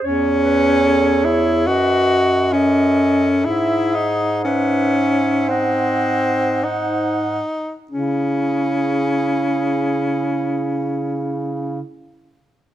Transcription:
0.03 E2 C#4 C#5
0.44 B4
0.86 A4
1.25 E4 G#4
1.67 F#2 F#4 B4 D#5
2.53 C#4 A4 D#5
3.45 G#2 E4 G#4 E5
3.95 D#4
4.44 C#4 B4 E5
4.96 C#5
5.48 C4 D#5 F#5
6.64 D#4 C5 F#5
7.91 C#3 C#4 E4 G#4

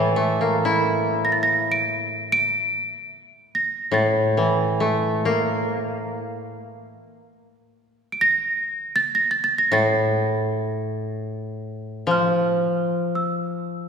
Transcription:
Already playing: A2 E3 A6
0.16 A3
0.41 A#3
0.65 E4
1.25 A#6
1.32 A6
1.43 A#6
1.72 D7
2.32 D7
3.55 A#6
3.92 A2 A6
4.37 E3
4.80 A3
5.25 A#3
8.12 D7
8.21 A#6
8.96 A6
9.15 A#6
9.31 A6
9.44 A6
9.58 A#6
9.72 A2 A6
12.07 F3
12.11 F6
13.15 E6

